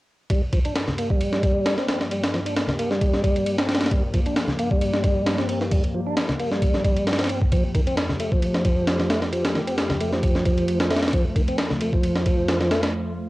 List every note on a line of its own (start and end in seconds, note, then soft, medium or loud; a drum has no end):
0.30 7.48 G2 medium
0.30 13.29 F3 medium
0.30 0.42 G3 medium
0.30 7.48 A#3 medium
0.30 7.48 G4 medium
0.30 kick loud
0.30 ride medium
0.53 0.59 F3 medium
0.53 kick medium
0.53 ride medium
0.65 0.74 D4 medium
0.65 ride soft
0.76 snare loud
0.76 ride medium
0.88 snare soft
0.88 high conga medium
0.98 1.09 A#3 medium
0.98 ride medium
1.10 1.42 G3 medium
1.10 kick medium
1.21 ride medium
1.33 snare soft
1.43 1.77 G3 medium
1.43 kick medium
1.43 ride medium
1.66 snare loud
1.66 ride medium
1.78 1.87 C4 medium
1.78 snare soft
1.88 1.99 C4 medium
1.88 snare medium
1.88 ride medium
2.01 snare soft
2.11 2.23 G3 medium
2.11 ride medium
2.23 snare medium
2.23 ride medium
2.33 2.40 F3 medium
2.33 snare soft
2.46 2.54 D4 medium
2.46 ride medium
2.56 snare loud
2.56 ride medium
2.67 snare soft
2.67 high conga medium
2.79 2.89 A#3 medium
2.79 ride medium
2.90 3.22 G3 medium
2.90 snare soft
3.01 kick loud
3.01 ride medium
3.13 snare soft
3.23 3.57 G3 medium
3.23 kick medium
3.23 ride medium
3.36 ride soft
3.46 ride medium
3.58 3.67 C4 medium
3.58 snare loud
3.69 3.79 C4 medium
3.69 snare medium
3.69 ride medium
3.75 snare medium
3.75 ride medium
3.81 snare medium
3.81 ride medium
3.86 snare medium
3.86 ride medium
3.91 4.03 G3 medium
3.91 kick loud
3.91 ride medium
4.14 4.20 F3 medium
4.14 kick medium
4.14 ride medium
4.26 4.35 D4 medium
4.26 ride soft
4.36 snare loud
4.36 ride medium
4.48 snare soft
4.48 high conga medium
4.59 4.70 A#3 medium
4.59 ride medium
4.71 5.03 G3 medium
4.71 kick medium
4.81 ride medium
4.94 snare soft
5.04 5.38 G3 medium
5.04 kick medium
5.04 ride medium
5.27 snare loud
5.27 ride medium
5.38 5.48 C4 medium
5.38 snare medium
5.49 5.60 C4 medium
5.49 ride medium
5.61 snare soft
5.72 5.83 G3 medium
5.72 kick loud
5.72 ride medium
5.84 ride soft
5.95 6.01 F3 medium
6.07 6.15 D4 medium
6.17 snare loud
6.17 ride medium
6.29 snare soft
6.29 high conga medium
6.39 6.50 A#3 medium
6.39 ride medium
6.52 6.83 G3 medium
6.52 snare soft
6.62 kick loud
6.62 ride medium
6.74 snare soft
6.84 7.18 G3 medium
6.84 kick medium
6.84 ride medium
6.97 ride soft
7.07 snare medium
7.07 ride medium
7.13 snare medium
7.13 ride medium
7.19 7.28 C4 medium
7.19 snare medium
7.19 ride medium
7.24 snare medium
7.24 ride medium
7.30 7.40 C4 medium
7.30 ride medium
7.42 kick medium
7.52 13.29 F2 medium
7.52 7.64 F3 medium
7.52 13.29 A3 medium
7.52 11.09 G4 medium
7.52 kick loud
7.52 ride medium
7.75 7.81 D#3 medium
7.75 kick medium
7.75 ride medium
7.87 7.96 C4 medium
7.87 ride soft
7.97 snare loud
7.97 ride medium
8.09 snare soft
8.09 high conga medium
8.20 8.31 A3 medium
8.20 ride medium
8.32 8.64 F3 medium
8.32 kick medium
8.42 ride medium
8.54 snare soft
8.65 8.98 F3 medium
8.65 kick medium
8.65 ride medium
8.87 snare loud
8.87 ride medium
9.00 9.10 F3 medium
9.00 snare medium
9.10 9.20 A3 medium
9.10 snare medium
9.10 ride medium
9.22 snare soft
9.33 9.44 F3 medium
9.33 ride medium
9.45 snare loud
9.45 ride medium
9.55 9.61 D#3 medium
9.55 snare soft
9.67 9.76 C4 medium
9.67 ride medium
9.78 snare loud
9.78 ride medium
9.90 snare soft
9.90 high conga medium
10.01 10.11 A3 medium
10.01 ride medium
10.13 10.45 F3 medium
10.13 snare soft
10.23 kick loud
10.23 ride medium
10.35 snare soft
10.46 10.79 F3 medium
10.46 kick medium
10.46 ride medium
10.58 ride soft
10.68 ride medium
10.80 10.90 F3 medium
10.80 snare loud
10.91 11.01 A3 medium
10.91 snare medium
10.91 ride medium
10.97 snare medium
10.97 ride medium
11.03 snare medium
11.03 ride medium
11.08 snare medium
11.08 ride medium
11.13 11.25 F3 medium
11.13 13.29 F4 medium
11.13 kick loud
11.13 ride medium
11.36 11.42 D#3 medium
11.36 kick medium
11.36 ride medium
11.48 11.57 C4 medium
11.48 ride soft
11.58 snare loud
11.58 ride medium
11.70 snare soft
11.70 high conga medium
11.81 11.92 A3 medium
11.81 ride medium
11.93 12.25 F3 medium
11.93 kick medium
12.03 ride medium
12.16 snare medium
12.26 12.60 F3 medium
12.26 kick medium
12.26 ride medium
12.49 snare loud
12.49 ride medium
12.61 12.71 F3 loud
12.61 snare medium
12.71 12.82 A3 medium
12.71 snare loud
12.71 ride medium
12.83 snare loud
12.83 ride medium